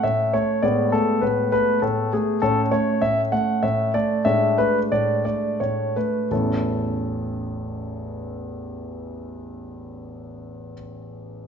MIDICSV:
0, 0, Header, 1, 2, 480
1, 0, Start_track
1, 0, Key_signature, 3, "major"
1, 0, Tempo, 593472
1, 516, Time_signature, 6, 3, 24, 8
1, 2436, Tempo, 632911
1, 3876, Tempo, 689655
1, 4356, Tempo, 719424
1, 8272, End_track
2, 0, Start_track
2, 0, Title_t, "Grand piano"
2, 0, Program_c, 0, 0
2, 0, Note_on_c, 0, 61, 35
2, 28, Note_on_c, 0, 76, 63
2, 31, Note_on_c, 0, 45, 40
2, 267, Note_off_c, 0, 45, 0
2, 270, Note_on_c, 0, 73, 57
2, 272, Note_off_c, 0, 76, 0
2, 273, Note_on_c, 0, 57, 39
2, 482, Note_off_c, 0, 61, 0
2, 505, Note_on_c, 0, 74, 62
2, 507, Note_off_c, 0, 57, 0
2, 509, Note_on_c, 0, 59, 36
2, 510, Note_on_c, 0, 45, 46
2, 512, Note_on_c, 0, 56, 35
2, 513, Note_off_c, 0, 73, 0
2, 725, Note_off_c, 0, 74, 0
2, 745, Note_off_c, 0, 45, 0
2, 747, Note_on_c, 0, 69, 67
2, 751, Note_on_c, 0, 57, 41
2, 982, Note_on_c, 0, 71, 54
2, 985, Note_off_c, 0, 57, 0
2, 988, Note_on_c, 0, 45, 40
2, 990, Note_off_c, 0, 69, 0
2, 1219, Note_off_c, 0, 71, 0
2, 1223, Note_off_c, 0, 45, 0
2, 1231, Note_on_c, 0, 71, 62
2, 1235, Note_on_c, 0, 57, 39
2, 1448, Note_off_c, 0, 71, 0
2, 1467, Note_off_c, 0, 57, 0
2, 1473, Note_on_c, 0, 69, 55
2, 1474, Note_on_c, 0, 45, 45
2, 1706, Note_off_c, 0, 45, 0
2, 1712, Note_off_c, 0, 69, 0
2, 1724, Note_on_c, 0, 68, 54
2, 1727, Note_on_c, 0, 57, 42
2, 1917, Note_off_c, 0, 59, 0
2, 1918, Note_off_c, 0, 56, 0
2, 1935, Note_off_c, 0, 68, 0
2, 1948, Note_off_c, 0, 57, 0
2, 1955, Note_on_c, 0, 69, 71
2, 1961, Note_on_c, 0, 57, 33
2, 1961, Note_on_c, 0, 61, 36
2, 1962, Note_on_c, 0, 45, 52
2, 2099, Note_off_c, 0, 69, 0
2, 2187, Note_off_c, 0, 57, 0
2, 2191, Note_off_c, 0, 45, 0
2, 2195, Note_on_c, 0, 73, 64
2, 2200, Note_on_c, 0, 57, 42
2, 2432, Note_off_c, 0, 57, 0
2, 2437, Note_off_c, 0, 73, 0
2, 2439, Note_on_c, 0, 76, 70
2, 2441, Note_on_c, 0, 45, 39
2, 2576, Note_off_c, 0, 76, 0
2, 2662, Note_off_c, 0, 45, 0
2, 2670, Note_on_c, 0, 78, 65
2, 2673, Note_on_c, 0, 57, 42
2, 2897, Note_off_c, 0, 57, 0
2, 2902, Note_off_c, 0, 78, 0
2, 2902, Note_on_c, 0, 76, 63
2, 2907, Note_on_c, 0, 45, 44
2, 3115, Note_off_c, 0, 76, 0
2, 3134, Note_off_c, 0, 45, 0
2, 3142, Note_on_c, 0, 74, 61
2, 3146, Note_on_c, 0, 57, 43
2, 3353, Note_off_c, 0, 61, 0
2, 3373, Note_on_c, 0, 76, 71
2, 3376, Note_off_c, 0, 57, 0
2, 3379, Note_on_c, 0, 62, 38
2, 3380, Note_on_c, 0, 45, 49
2, 3381, Note_off_c, 0, 74, 0
2, 3381, Note_on_c, 0, 56, 36
2, 3617, Note_off_c, 0, 45, 0
2, 3621, Note_off_c, 0, 76, 0
2, 3626, Note_on_c, 0, 71, 62
2, 3632, Note_on_c, 0, 57, 38
2, 3776, Note_off_c, 0, 71, 0
2, 3872, Note_off_c, 0, 57, 0
2, 3881, Note_on_c, 0, 74, 67
2, 3884, Note_on_c, 0, 45, 41
2, 4101, Note_off_c, 0, 74, 0
2, 4110, Note_off_c, 0, 45, 0
2, 4112, Note_on_c, 0, 74, 58
2, 4114, Note_on_c, 0, 57, 34
2, 4349, Note_off_c, 0, 57, 0
2, 4355, Note_off_c, 0, 74, 0
2, 4357, Note_on_c, 0, 73, 51
2, 4360, Note_on_c, 0, 45, 33
2, 4590, Note_off_c, 0, 45, 0
2, 4595, Note_off_c, 0, 73, 0
2, 4598, Note_on_c, 0, 71, 44
2, 4601, Note_on_c, 0, 57, 31
2, 4808, Note_off_c, 0, 62, 0
2, 4809, Note_off_c, 0, 56, 0
2, 4822, Note_off_c, 0, 57, 0
2, 4827, Note_on_c, 0, 33, 35
2, 4830, Note_on_c, 0, 40, 30
2, 4831, Note_on_c, 0, 52, 29
2, 4832, Note_on_c, 0, 57, 27
2, 4834, Note_on_c, 0, 69, 41
2, 4836, Note_off_c, 0, 71, 0
2, 4836, Note_on_c, 0, 61, 30
2, 4837, Note_on_c, 0, 64, 29
2, 4958, Control_c, 0, 64, 127
2, 7771, Note_off_c, 0, 33, 0
2, 7775, Note_off_c, 0, 40, 0
2, 7776, Note_off_c, 0, 52, 0
2, 7777, Note_off_c, 0, 57, 0
2, 7778, Note_off_c, 0, 69, 0
2, 7781, Note_off_c, 0, 61, 0
2, 7782, Note_off_c, 0, 64, 0
2, 8272, End_track
0, 0, End_of_file